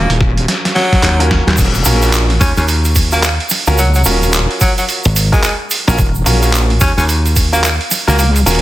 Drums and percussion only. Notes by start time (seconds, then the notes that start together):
0.10 closed hi-hat
0.21 kick, snare
0.38 closed hi-hat
0.48 snare, closed hi-hat
0.65 snare, closed hi-hat
0.76 snare
0.92 kick, snare, closed hi-hat
1.03 snare, clap, closed hi-hat
1.20 closed hi-hat
1.31 kick, snare
1.48 snare, closed hi-hat
1.51 snare
1.53 snare
1.56 kick, snare, shaker
1.58 snare, open hi-hat, crash
1.63 snare
1.67 snare
1.71 snare, open hi-hat, shaker
1.85 open hi-hat, shaker
2.02 open hi-hat, shaker
2.13 clap, open hi-hat, shaker
2.30 open hi-hat
2.41 kick, snare, open hi-hat, shaker
2.57 open hi-hat, shaker
2.68 open hi-hat, shaker
2.85 open hi-hat, shaker
2.95 kick, open hi-hat, shaker
3.12 open hi-hat, shaker
3.23 clap, open hi-hat, shaker
3.40 open hi-hat
3.50 snare, open hi-hat, shaker
3.67 open hi-hat, shaker
3.78 open hi-hat, shaker
3.94 open hi-hat, shaker
4.05 open hi-hat, shaker
4.23 open hi-hat, shaker
4.33 clap, open hi-hat, shaker
4.51 open hi-hat
4.61 kick, open hi-hat, shaker
4.78 open hi-hat, shaker
4.89 open hi-hat, shaker
5.04 open hi-hat, shaker
5.16 open hi-hat, shaker
5.33 kick, open hi-hat, shaker
5.43 clap, open hi-hat, shaker
5.71 open hi-hat, shaker
5.88 open hi-hat, shaker
5.98 kick, open hi-hat, shaker
6.15 shaker
6.26 open hi-hat, shaker
6.42 open hi-hat, shaker
6.54 clap, open hi-hat, shaker
6.70 open hi-hat
6.81 kick, snare, open hi-hat, shaker
6.98 open hi-hat, shaker
7.00 open hi-hat
7.03 open hi-hat
7.05 open hi-hat
7.07 open hi-hat
7.09 open hi-hat, shaker
7.26 open hi-hat, shaker
7.36 kick, open hi-hat, shaker
7.53 open hi-hat, shaker
7.64 clap, open hi-hat, shaker
7.81 open hi-hat
7.91 snare, open hi-hat, shaker
8.08 open hi-hat, shaker
8.19 open hi-hat, shaker
8.36 open hi-hat, shaker
8.46 open hi-hat, shaker
8.51 open hi-hat
8.55 open hi-hat